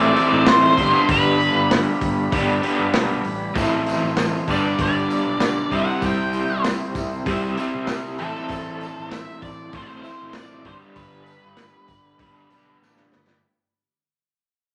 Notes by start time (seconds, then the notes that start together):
Already playing: A1 A2 E3 A3 C4 E4 C5 D5
0.14 E3 A3 C4 E4, open hi-hat
0.18 A2
0.32 A2
0.46 C5, snare, open hi-hat
0.77 G1 G2 D3 G3 B3 D4 B5, kick, open hi-hat
1.09 G1 B4, kick, open hi-hat
1.40 open hi-hat
1.55 G1
1.71 snare, open hi-hat
2.01 G1, kick, open hi-hat
2.31 G1 G2 D3 G3 B3 D4, kick, open hi-hat
2.62 D3 G3 B3 D4, open hi-hat
2.66 G2
2.79 G2
2.94 B1, snare, open hi-hat
3.24 A1, open hi-hat
3.54 A1 A2 E3 A3 C4 E4 C5, kick, open hi-hat, tambourine
3.58 E4
3.86 open hi-hat, tambourine
4.03 A1, tambourine
4.17 snare, open hi-hat, tambourine
4.35 tambourine
4.48 G1 G2 D3 G3 B3 D4 B4 D5, kick, open hi-hat, tambourine
4.52 D4
4.65 tambourine
4.78 G1, kick, open hi-hat, tambourine
4.83 D5
4.96 tambourine
5.10 open hi-hat, tambourine
5.26 B1
5.40 snare, open hi-hat, tambourine
5.58 tambourine
5.70 C2 C3 G3 C4 E4 C5, kick, open hi-hat, tambourine
5.75 E4 F#5
5.88 tambourine
6.02 C2, kick, open hi-hat, tambourine
6.06 G5
6.33 open hi-hat, tambourine
6.49 C2, tambourine
6.64 snare, open hi-hat, tambourine
6.80 tambourine
6.95 C2, kick, open hi-hat, tambourine
7.12 tambourine
7.26 C2 C3 G3 C4, kick, open hi-hat, tambourine
7.30 E4
7.44 tambourine
7.57 C3 G3 C4 E4, open hi-hat, tambourine
7.75 C3
7.87 snare, open hi-hat, tambourine
8.07 tambourine
8.18 A1 A2 E3 A3 C4 A4, open hi-hat, tambourine
8.23 E4
8.37 tambourine
8.49 A1, kick, open hi-hat, tambourine
8.81 open hi-hat, tambourine
8.98 A1, tambourine
9.11 E5, snare, open hi-hat, tambourine
9.30 tambourine
9.42 A1 D5, kick, open hi-hat, tambourine
9.73 A1 A2 E3 A3 C4 E4 C5, kick, open hi-hat, tambourine
9.81 D5
9.86 C5, tambourine
10.02 A3 C4 E4 C5, open hi-hat, tambourine
10.07 A2 E3
10.21 A1
10.33 D5, snare, open hi-hat, tambourine
10.53 tambourine
10.65 G1 G2 D3 G3 D4 C5 B5, kick, open hi-hat, tambourine
10.69 B3 D4
10.83 tambourine
10.96 G1 B4, kick, open hi-hat, tambourine
11.12 tambourine
11.26 open hi-hat, tambourine
11.43 G1, tambourine
11.57 snare, open hi-hat, tambourine
11.73 tambourine
11.88 G1, kick, open hi-hat, tambourine
12.06 tambourine
12.18 G1 G2 D3 G3 B3 D4, kick, open hi-hat, tambourine
12.37 tambourine
12.50 B1 G2 D3 G3 B3 D4, open hi-hat, tambourine
12.81 A1, snare, tambourine
12.97 snare, tambourine
13.12 G1, snare, tambourine
13.27 snare
13.31 tambourine